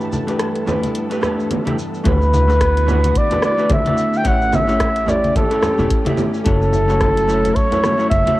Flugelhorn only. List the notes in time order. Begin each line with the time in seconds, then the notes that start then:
2.06 B4
3.18 D5
3.45 D5
3.73 E5
4.17 G5
4.27 F#5
4.55 E5
5.09 D5
5.37 A4
6.46 A4
7.55 C#5
8.10 E5